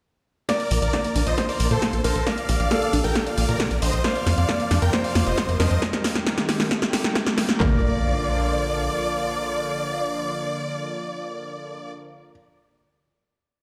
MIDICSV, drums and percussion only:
0, 0, Header, 1, 2, 480
1, 0, Start_track
1, 0, Key_signature, -2, "major"
1, 0, Tempo, 444444
1, 528, Time_signature, 4, 2, 24, 8
1, 14715, End_track
2, 0, Start_track
2, 0, Title_t, "Drums"
2, 527, Note_on_c, 9, 38, 46
2, 527, Note_on_c, 9, 42, 90
2, 528, Note_on_c, 9, 36, 113
2, 635, Note_off_c, 9, 38, 0
2, 635, Note_off_c, 9, 42, 0
2, 636, Note_off_c, 9, 36, 0
2, 647, Note_on_c, 9, 42, 49
2, 755, Note_off_c, 9, 42, 0
2, 767, Note_on_c, 9, 46, 105
2, 875, Note_off_c, 9, 46, 0
2, 888, Note_on_c, 9, 42, 52
2, 996, Note_off_c, 9, 42, 0
2, 1008, Note_on_c, 9, 36, 111
2, 1008, Note_on_c, 9, 38, 44
2, 1008, Note_on_c, 9, 42, 85
2, 1116, Note_off_c, 9, 36, 0
2, 1116, Note_off_c, 9, 38, 0
2, 1116, Note_off_c, 9, 42, 0
2, 1128, Note_on_c, 9, 42, 52
2, 1236, Note_off_c, 9, 42, 0
2, 1249, Note_on_c, 9, 46, 101
2, 1357, Note_off_c, 9, 46, 0
2, 1368, Note_on_c, 9, 42, 53
2, 1476, Note_off_c, 9, 42, 0
2, 1488, Note_on_c, 9, 38, 52
2, 1488, Note_on_c, 9, 42, 88
2, 1489, Note_on_c, 9, 36, 109
2, 1596, Note_off_c, 9, 38, 0
2, 1596, Note_off_c, 9, 42, 0
2, 1597, Note_off_c, 9, 36, 0
2, 1607, Note_on_c, 9, 46, 60
2, 1715, Note_off_c, 9, 46, 0
2, 1727, Note_on_c, 9, 46, 104
2, 1835, Note_off_c, 9, 46, 0
2, 1848, Note_on_c, 9, 42, 52
2, 1956, Note_off_c, 9, 42, 0
2, 1967, Note_on_c, 9, 38, 57
2, 1967, Note_on_c, 9, 42, 99
2, 1969, Note_on_c, 9, 36, 118
2, 2075, Note_off_c, 9, 38, 0
2, 2075, Note_off_c, 9, 42, 0
2, 2077, Note_off_c, 9, 36, 0
2, 2087, Note_on_c, 9, 42, 54
2, 2195, Note_off_c, 9, 42, 0
2, 2207, Note_on_c, 9, 46, 104
2, 2315, Note_off_c, 9, 46, 0
2, 2328, Note_on_c, 9, 42, 54
2, 2436, Note_off_c, 9, 42, 0
2, 2447, Note_on_c, 9, 38, 54
2, 2447, Note_on_c, 9, 42, 83
2, 2449, Note_on_c, 9, 36, 121
2, 2555, Note_off_c, 9, 38, 0
2, 2555, Note_off_c, 9, 42, 0
2, 2557, Note_off_c, 9, 36, 0
2, 2567, Note_on_c, 9, 42, 49
2, 2675, Note_off_c, 9, 42, 0
2, 2687, Note_on_c, 9, 46, 106
2, 2689, Note_on_c, 9, 36, 60
2, 2795, Note_off_c, 9, 46, 0
2, 2797, Note_off_c, 9, 36, 0
2, 2808, Note_on_c, 9, 42, 50
2, 2916, Note_off_c, 9, 42, 0
2, 2927, Note_on_c, 9, 38, 59
2, 2927, Note_on_c, 9, 42, 88
2, 2929, Note_on_c, 9, 36, 117
2, 3035, Note_off_c, 9, 38, 0
2, 3035, Note_off_c, 9, 42, 0
2, 3037, Note_off_c, 9, 36, 0
2, 3047, Note_on_c, 9, 42, 49
2, 3155, Note_off_c, 9, 42, 0
2, 3166, Note_on_c, 9, 46, 105
2, 3274, Note_off_c, 9, 46, 0
2, 3286, Note_on_c, 9, 46, 60
2, 3394, Note_off_c, 9, 46, 0
2, 3406, Note_on_c, 9, 38, 65
2, 3406, Note_on_c, 9, 42, 87
2, 3408, Note_on_c, 9, 36, 115
2, 3514, Note_off_c, 9, 38, 0
2, 3514, Note_off_c, 9, 42, 0
2, 3516, Note_off_c, 9, 36, 0
2, 3527, Note_on_c, 9, 42, 53
2, 3635, Note_off_c, 9, 42, 0
2, 3646, Note_on_c, 9, 46, 111
2, 3754, Note_off_c, 9, 46, 0
2, 3766, Note_on_c, 9, 42, 51
2, 3874, Note_off_c, 9, 42, 0
2, 3886, Note_on_c, 9, 38, 74
2, 3886, Note_on_c, 9, 42, 92
2, 3888, Note_on_c, 9, 36, 122
2, 3994, Note_off_c, 9, 38, 0
2, 3994, Note_off_c, 9, 42, 0
2, 3996, Note_off_c, 9, 36, 0
2, 4006, Note_on_c, 9, 42, 53
2, 4114, Note_off_c, 9, 42, 0
2, 4126, Note_on_c, 9, 46, 105
2, 4234, Note_off_c, 9, 46, 0
2, 4246, Note_on_c, 9, 42, 52
2, 4354, Note_off_c, 9, 42, 0
2, 4366, Note_on_c, 9, 38, 73
2, 4366, Note_on_c, 9, 42, 87
2, 4368, Note_on_c, 9, 36, 127
2, 4474, Note_off_c, 9, 38, 0
2, 4474, Note_off_c, 9, 42, 0
2, 4476, Note_off_c, 9, 36, 0
2, 4487, Note_on_c, 9, 42, 47
2, 4595, Note_off_c, 9, 42, 0
2, 4607, Note_on_c, 9, 38, 73
2, 4607, Note_on_c, 9, 46, 108
2, 4715, Note_off_c, 9, 38, 0
2, 4715, Note_off_c, 9, 46, 0
2, 4727, Note_on_c, 9, 42, 48
2, 4835, Note_off_c, 9, 42, 0
2, 4847, Note_on_c, 9, 38, 74
2, 4847, Note_on_c, 9, 42, 85
2, 4848, Note_on_c, 9, 36, 125
2, 4955, Note_off_c, 9, 38, 0
2, 4955, Note_off_c, 9, 42, 0
2, 4956, Note_off_c, 9, 36, 0
2, 4966, Note_on_c, 9, 42, 51
2, 5074, Note_off_c, 9, 42, 0
2, 5086, Note_on_c, 9, 38, 79
2, 5086, Note_on_c, 9, 46, 109
2, 5194, Note_off_c, 9, 38, 0
2, 5194, Note_off_c, 9, 46, 0
2, 5206, Note_on_c, 9, 42, 52
2, 5314, Note_off_c, 9, 42, 0
2, 5325, Note_on_c, 9, 38, 82
2, 5325, Note_on_c, 9, 42, 90
2, 5328, Note_on_c, 9, 36, 124
2, 5433, Note_off_c, 9, 38, 0
2, 5433, Note_off_c, 9, 42, 0
2, 5436, Note_off_c, 9, 36, 0
2, 5446, Note_on_c, 9, 46, 64
2, 5554, Note_off_c, 9, 46, 0
2, 5566, Note_on_c, 9, 38, 88
2, 5566, Note_on_c, 9, 46, 116
2, 5674, Note_off_c, 9, 38, 0
2, 5674, Note_off_c, 9, 46, 0
2, 5686, Note_on_c, 9, 42, 50
2, 5794, Note_off_c, 9, 42, 0
2, 5806, Note_on_c, 9, 38, 90
2, 5806, Note_on_c, 9, 42, 95
2, 5808, Note_on_c, 9, 36, 127
2, 5914, Note_off_c, 9, 38, 0
2, 5914, Note_off_c, 9, 42, 0
2, 5916, Note_off_c, 9, 36, 0
2, 5926, Note_on_c, 9, 42, 51
2, 6034, Note_off_c, 9, 42, 0
2, 6046, Note_on_c, 9, 38, 87
2, 6046, Note_on_c, 9, 46, 117
2, 6154, Note_off_c, 9, 38, 0
2, 6154, Note_off_c, 9, 46, 0
2, 6166, Note_on_c, 9, 42, 52
2, 6274, Note_off_c, 9, 42, 0
2, 6287, Note_on_c, 9, 38, 85
2, 6287, Note_on_c, 9, 42, 85
2, 6288, Note_on_c, 9, 36, 127
2, 6395, Note_off_c, 9, 38, 0
2, 6395, Note_off_c, 9, 42, 0
2, 6396, Note_off_c, 9, 36, 0
2, 6407, Note_on_c, 9, 38, 78
2, 6407, Note_on_c, 9, 42, 48
2, 6515, Note_off_c, 9, 38, 0
2, 6515, Note_off_c, 9, 42, 0
2, 6527, Note_on_c, 9, 38, 97
2, 6527, Note_on_c, 9, 46, 107
2, 6528, Note_on_c, 9, 36, 64
2, 6635, Note_off_c, 9, 38, 0
2, 6635, Note_off_c, 9, 46, 0
2, 6636, Note_off_c, 9, 36, 0
2, 6647, Note_on_c, 9, 38, 83
2, 6647, Note_on_c, 9, 42, 49
2, 6755, Note_off_c, 9, 38, 0
2, 6755, Note_off_c, 9, 42, 0
2, 6767, Note_on_c, 9, 38, 92
2, 6767, Note_on_c, 9, 42, 85
2, 6768, Note_on_c, 9, 36, 127
2, 6875, Note_off_c, 9, 38, 0
2, 6875, Note_off_c, 9, 42, 0
2, 6876, Note_off_c, 9, 36, 0
2, 6887, Note_on_c, 9, 38, 87
2, 6887, Note_on_c, 9, 42, 53
2, 6995, Note_off_c, 9, 38, 0
2, 6995, Note_off_c, 9, 42, 0
2, 7006, Note_on_c, 9, 38, 102
2, 7006, Note_on_c, 9, 46, 107
2, 7114, Note_off_c, 9, 38, 0
2, 7114, Note_off_c, 9, 46, 0
2, 7126, Note_on_c, 9, 38, 89
2, 7126, Note_on_c, 9, 46, 64
2, 7234, Note_off_c, 9, 38, 0
2, 7234, Note_off_c, 9, 46, 0
2, 7247, Note_on_c, 9, 38, 103
2, 7247, Note_on_c, 9, 42, 84
2, 7248, Note_on_c, 9, 36, 121
2, 7355, Note_off_c, 9, 38, 0
2, 7355, Note_off_c, 9, 42, 0
2, 7356, Note_off_c, 9, 36, 0
2, 7367, Note_on_c, 9, 38, 96
2, 7367, Note_on_c, 9, 42, 52
2, 7475, Note_off_c, 9, 38, 0
2, 7475, Note_off_c, 9, 42, 0
2, 7487, Note_on_c, 9, 38, 109
2, 7487, Note_on_c, 9, 46, 113
2, 7595, Note_off_c, 9, 38, 0
2, 7595, Note_off_c, 9, 46, 0
2, 7607, Note_on_c, 9, 38, 90
2, 7607, Note_on_c, 9, 42, 51
2, 7715, Note_off_c, 9, 38, 0
2, 7715, Note_off_c, 9, 42, 0
2, 7727, Note_on_c, 9, 38, 109
2, 7727, Note_on_c, 9, 42, 91
2, 7728, Note_on_c, 9, 36, 127
2, 7835, Note_off_c, 9, 38, 0
2, 7835, Note_off_c, 9, 42, 0
2, 7836, Note_off_c, 9, 36, 0
2, 7847, Note_on_c, 9, 38, 99
2, 7847, Note_on_c, 9, 42, 51
2, 7955, Note_off_c, 9, 38, 0
2, 7955, Note_off_c, 9, 42, 0
2, 7967, Note_on_c, 9, 38, 115
2, 7967, Note_on_c, 9, 46, 111
2, 8075, Note_off_c, 9, 38, 0
2, 8075, Note_off_c, 9, 46, 0
2, 8086, Note_on_c, 9, 38, 97
2, 8086, Note_on_c, 9, 42, 50
2, 8194, Note_off_c, 9, 38, 0
2, 8194, Note_off_c, 9, 42, 0
2, 8208, Note_on_c, 9, 36, 111
2, 8208, Note_on_c, 9, 39, 89
2, 8208, Note_on_c, 9, 43, 107
2, 8316, Note_off_c, 9, 36, 0
2, 8316, Note_off_c, 9, 39, 0
2, 8316, Note_off_c, 9, 43, 0
2, 14715, End_track
0, 0, End_of_file